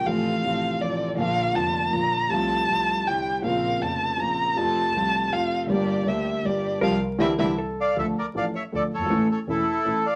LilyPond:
<<
  \new Staff \with { instrumentName = "Violin" } { \time 3/4 \key f \major \tempo 4 = 160 f''2 d''8. r16 | f''4 a''4 bes''4 | a''2 g''8. r16 | f''4 a''4 bes''4 |
a''2 f''8. r16 | d''4 e''4 d''4 | f''8 r8 e''8 e''8 r4 | \key d \minor r2. |
r2. | }
  \new Staff \with { instrumentName = "Bandoneon" } { \time 3/4 \key f \major r2. | r2. | r2. | r2. |
r2. | r2. | r2 r8 <d'' f''>8 | \key d \minor <a' e''>8 <bes' d''>8 <d'' f''>8 <cis'' e''>8 <a' d''>8 <a' cis''>8~ |
<a' cis''>8 <a' cis''>8 <e' a'>4. <d'' f''>8 | }
  \new Staff \with { instrumentName = "Hollow-body jazz guitar" } { \time 3/4 \key f \major r2. | r2. | r2. | r2. |
r2. | r2. | bes'2 a'4 | \key d \minor r2. |
r2. | }
  \new Staff \with { instrumentName = "String section" } { \time 3/4 \key f \major <c' f' a'>4 <c' f' a'>4 <c' f' a'>4 | <d' f' bes'>4 <d' f' bes'>4 <d' f' bes'>4 | <c' f' a'>4 <c' f' a'>4 <d' e' c''>4 | <c' bes'>4 <c' bes'>4 <c' bes'>4 |
<c' f' a'>4 <c' f' a'>4 <c' f' a'>4 | <bes d' g'>4 <bes d' g'>4 <bes d' g'>4 | <g c' f'>8 r8 <c' d' e'>8 <c' d' e'>8 r4 | \key d \minor r2. |
r2. | }
  \new Staff \with { instrumentName = "Grand piano" } { \clef bass \time 3/4 \key f \major <a,, a, c f a f'>4 <a,, a, c f a f'>4 <a,, a, c f a f'>4 | <bes,, bes, d f bes f'>4 <f,, f, d f bes f'>4 <bes,, bes, d f bes f'>4 | <c, c f a f'>4 <c, c f a f'>4 <c, c d g c' e'>4 | <bes,, bes, des bes c' f'>4 <f,, f, des bes c' f'>4 <bes,, bes, des bes c' f'>4 |
<f, c f a f'>4 <c, c f a f'>4 <f, c f a f'>4 | <g,, g, d g bes g'>4 <d, d g bes g'>4 <g,, g, d g bes g'>4 | <c f g>8 r8 <d e g>8 <d e g>8 r4 | \key d \minor <d, d f a d' a'>8 r8 <a,, a, f a d' a'>8 r8 <d, d f a d' a'>8 r32 fis,,32 g,,32 gis,,32 |
<a,, a, e a cis' a'>8 r8 <e,, e, e a cis' a'>8 r8 <a,, a, e a cis' a'>8 r8 | }
  \new Staff \with { instrumentName = "Double bass" } { \clef bass \time 3/4 \key f \major a,,4 a,,4 a,,4 | bes,,4 f,,4 bes,,4 | c,4 c,4 c,4 | bes,,4 f,,4 bes,,4 |
f,4 c,4 f,4 | g,,4 d,4 g,,4 | c,8 r8 c,8 c,8 r4 | \key d \minor d,8 r8 a,,8 r8 d,8 g,,8 |
a,,8 r8 e,,8 r8 a,,8 r8 | }
>>